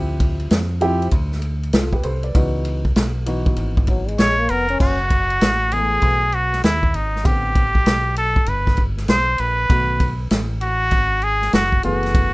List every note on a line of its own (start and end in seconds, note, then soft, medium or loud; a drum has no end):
0.00 0.47 D2 loud
0.00 0.61 F3 medium
0.00 0.61 C4 medium
0.00 0.61 E4 medium
0.00 0.61 G4 loud
0.20 kick loud
0.20 ride medium
0.40 ride soft
0.51 1.09 F2 loud
0.51 snare loud
0.51 hi-hat pedal medium
0.51 ride medium
0.81 1.05 F3 medium
0.81 1.05 C4 medium
0.81 1.06 E4 medium
0.81 1.06 G4 loud
0.81 ride medium
1.02 ride soft
1.11 1.70 D2 loud
1.11 kick medium
1.11 ride medium
1.32 snare soft
1.42 ride soft
1.63 ride soft
1.73 2.03 C2 medium
1.73 1.92 F4 medium
1.73 1.92 A4 medium
1.73 snare loud
1.73 hi-hat pedal soft
1.73 ride medium
1.93 2.04 G4 soft
1.93 2.04 B4 medium
1.93 kick medium
2.03 2.34 C2 medium
2.03 2.23 A4 medium
2.03 2.23 C5 medium
2.03 ride medium
2.23 2.53 B4 medium
2.23 2.53 D5 medium
2.23 ride soft
2.35 2.93 C#2 loud
2.35 2.81 E3 medium
2.35 2.81 B3 medium
2.35 2.81 D#4 medium
2.35 2.81 F#4 medium
2.35 kick loud
2.35 ride medium
2.65 ride medium
2.85 kick medium
2.96 3.54 B1 loud
2.96 snare loud
2.96 hi-hat pedal soft
2.96 ride medium
3.26 4.14 E3 medium
3.26 4.14 B3 medium
3.26 4.14 D#4 medium
3.26 4.14 F#4 medium
3.26 ride medium
3.46 kick loud
3.56 4.16 G#1 medium
3.56 ride medium
3.77 kick medium
3.87 4.09 F#3 medium
3.87 kick medium
3.87 ride medium
4.08 4.41 G#3 medium
4.08 ride soft
4.18 4.48 A#1 medium
4.18 4.52 C#5 loud
4.18 snare loud
4.18 hi-hat pedal medium
4.18 ride medium
4.39 4.52 A#3 medium
4.49 4.78 F1 medium
4.49 4.68 B3 medium
4.49 4.80 A#4 loud
4.49 ride medium
4.68 4.98 C#4 medium
4.68 ride soft
4.80 5.38 F#1 loud
4.80 5.75 F#4 loud
4.80 kick loud
4.80 crash medium
5.10 kick medium
5.10 ride medium
5.30 ride soft
5.41 5.99 A1 medium
5.41 snare loud
5.41 hi-hat pedal soft
5.41 ride medium
5.71 6.18 E3 medium
5.71 5.80 G#3 medium
5.71 6.18 B3 medium
5.71 6.18 G#4 medium
5.71 6.36 G#4 loud
5.71 ride medium
5.79 6.21 A3 medium
6.02 6.60 B1 loud
6.02 kick medium
6.02 ride medium
6.32 6.64 F#4 medium
6.32 ride medium
6.53 snare soft
6.53 ride soft
6.63 6.93 D#2 medium
6.63 6.97 E4 medium
6.63 snare loud
6.63 hi-hat pedal soft
6.63 ride medium
6.83 kick medium
6.94 7.23 G#1 medium
6.94 7.27 D#4 medium
6.94 ride medium
7.16 snare soft
7.24 7.83 A1 medium
7.24 7.63 D3 medium
7.24 7.63 B3 soft
7.24 7.63 C4 medium
7.24 7.63 G4 medium
7.24 8.17 G4 medium
7.24 kick loud
7.24 ride medium
7.55 kick loud
7.55 ride medium
7.75 kick medium
7.86 8.34 B1 loud
7.86 snare medium
7.86 hi-hat pedal soft
7.86 ride medium
8.16 8.50 A4 medium
8.16 ride medium
8.36 muted fingered electric bass stroke soft
8.36 kick loud
8.46 9.06 G1 medium
8.46 8.83 B4 medium
8.46 ride medium
8.67 kick medium
8.67 snare soft
8.77 kick medium
8.77 ride medium
8.97 snare soft
8.97 ride soft
9.08 9.38 B1 loud
9.08 9.42 C5 loud
9.08 snare loud
9.08 hi-hat pedal soft
9.08 ride medium
9.38 9.68 A#1 medium
9.38 10.31 B4 medium
9.38 ride medium
9.69 10.28 B1 loud
9.69 10.08 D#3 soft
9.69 10.08 A3 soft
9.69 10.08 B3 soft
9.69 10.08 F#4 medium
9.69 kick loud
9.69 ride medium
10.00 kick loud
10.00 ride medium
10.31 10.89 A1 loud
10.31 snare loud
10.31 hi-hat pedal medium
10.31 ride medium
10.61 11.25 F#4 loud
10.61 ride medium
10.91 11.50 G#1 loud
10.91 kick medium
10.91 ride medium
11.22 11.53 G#4 loud
11.22 ride soft
11.42 snare soft
11.42 ride soft
11.53 11.82 F#1 medium
11.53 11.82 F#4 loud
11.53 snare loud
11.53 hi-hat pedal soft
11.53 ride medium
11.72 kick medium
11.83 12.34 F#1 medium
11.83 12.34 E3 medium
11.83 12.34 A3 medium
11.83 12.34 B3 medium
11.83 12.34 F#4 loud
11.83 12.34 G#4 medium
11.83 ride medium
12.03 snare soft
12.03 ride soft
12.14 kick loud
12.14 ride medium